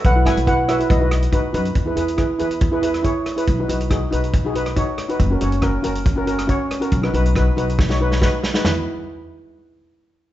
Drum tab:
HH |x-xxx-xxx-xxx-xx|x-xxx-xxx-xxx-xx|x-xxx-xxx-xxx-xx|x-xxx-xxx-xxx-xx|
SD |--r---r---r-----|----r------r--r-|----r------r--r-|----r------r--r-|
FT |----------------|----------------|----------------|----------------|
BD |o---o---o---o---|o---o---o---o---|o---o---o---o---|o---o---o---o---|

HH |x-xxx-xx--------|----------------|
SD |-r--r---oo-oo-oo|o---------------|
FT |----------------|o---------------|
BD |o---o---o---o---|----------------|